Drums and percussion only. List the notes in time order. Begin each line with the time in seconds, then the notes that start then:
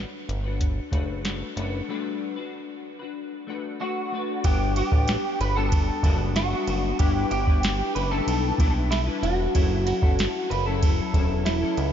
0.29 closed hi-hat
0.61 kick, closed hi-hat
0.92 kick, closed hi-hat
1.25 snare, closed hi-hat
1.57 closed hi-hat
4.44 kick, ride
4.76 ride
4.92 kick
5.08 snare, ride
5.41 ride
5.72 kick, ride
6.03 kick, ride
6.36 snare, ride
6.67 ride
6.99 kick, ride
7.31 ride
7.47 kick
7.63 snare, ride
7.96 ride
8.28 ride
8.59 kick, ride
8.92 snare, ride
9.23 ride
9.55 kick, ride
9.87 ride
10.02 kick
10.19 snare, ride
10.51 ride
10.82 kick, ride
11.14 kick, ride
11.46 snare, ride
11.77 ride